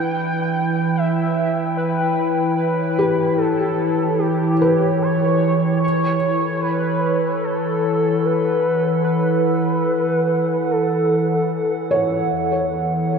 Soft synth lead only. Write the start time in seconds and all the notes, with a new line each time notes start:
Already playing: G5
0.97 E5
1.77 B4
2.56 B4
3.37 A4
4.19 G4
5.02 C#5
5.84 C#5
6.60 B4
7.44 A4
8.25 B4
9.04 B4
10.71 A4